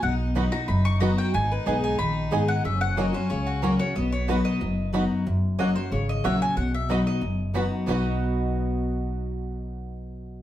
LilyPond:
<<
  \new Staff \with { instrumentName = "Mandolin" } { \time 4/4 \key b \major \tempo 4 = 184 fis''8 r4 ais''8 b''8 cis'''8 ais''8 g''8 | gis''8 b'8 dis''8 gis''8 b''4. fis''8 | e''8 fis''8 dis''8 c''8 cis''8 fis'8 ais'8 cis''8 | dis''8 cis''8 b'8 dis''4. r4 |
r4 dis''8 c''8 cis''8 dis''8 e''8 gis''8 | fis''8 e''8 dis''8 dis''2~ dis''16 r16 | dis''1~ | dis''1 | }
  \new Staff \with { instrumentName = "Mandolin" } { \time 4/4 \key b \major r4 <b fis' dis'' b''>8 r4. <b fis' dis'' b''>8 r8 | r4 <b gis' dis'' gis''>8 r4. <b gis' dis'' gis''>8 r8 | r4 <ais fis' cis'' fis''>8 r4. <ais fis' cis'' fis''>8 r8 | r4 <b fis' dis'' b''>8 r4. <b fis' dis'' b''>8 r8 |
r4 <ais fis' cis'' fis''>8 r4. <ais fis' cis'' fis''>8 r8 | r4 <b fis' dis'' b''>8 r4. <b fis' dis'' b''>8 r8 | <b fis' dis'' b''>1~ | <b fis' dis'' b''>1 | }
  \new Staff \with { instrumentName = "Fiddle" } { \time 4/4 \key b \major dis'4 dis'2 fis'4 | dis'1 | cis'1 | b2.~ b8 r8 |
r1 | r1 | r1 | r1 | }
  \new Staff \with { instrumentName = "Five-string banjo" } { \time 4/4 \key b \major r4 <b dis' fis'>8 r4. <b dis' fis'>8 r8 | r4 <b dis' gis'>8 r4. <b dis' gis'>8 r8 | r4 <cis' fis'>8 r4. <cis' fis'>8 r8 | r4 <b dis' fis'>8 r4. <b dis' fis'>8 r8 |
r4 <cis' fis'>8 r4. <cis' fis'>8 r8 | r4 <b dis' fis'>8 r4. <b dis' fis'>8 r8 | <b dis' fis'>1~ | <b dis' fis'>1 | }
  \new Staff \with { instrumentName = "Steel-string acoustic guitar" } { \time 4/4 \key b \major << { r4 <fis b dis' fis'>8 <dis' fis'>8 r4 <fis b dis' fis'>4 | r4 <gis b dis' gis'>4 r4 <gis b dis' gis'>4 | r4 <fis ais cis' fis'>8 <cis' fis'>8 r4 <fis ais cis' fis'>8 <cis' fis'>8 | r4 <fis b dis' fis'>4 r4 <fis b dis' fis'>4 |
r4 <fis ais cis' fis'>8 <cis' fis'>8 r4 <fis ais cis' fis'>4 | r4 <fis b dis' fis'>4 r4 <fis b dis' fis'>4 | <b, fis b dis' fis'>1~ | <b, fis b dis' fis'>1 | } \\ { b,2 fis,2 | gis,2 dis2 | fis,2 cis2 | b,2 fis,2 |
fis,2 cis2 | b,2 fis,2 | r1 | r1 | } >> }
  \new Staff \with { instrumentName = "Upright bass" } { \clef bass \time 4/4 \key b \major b,,2 fis,,2 | gis,,4 b,,4 ais,,4 gis,,4 | fis,,2 cis,2 | b,,2 fis,,2 |
fis,,2 gis,,4 ais,,4 | b,,2 fis,,2 | b,,1~ | b,,1 | }
>>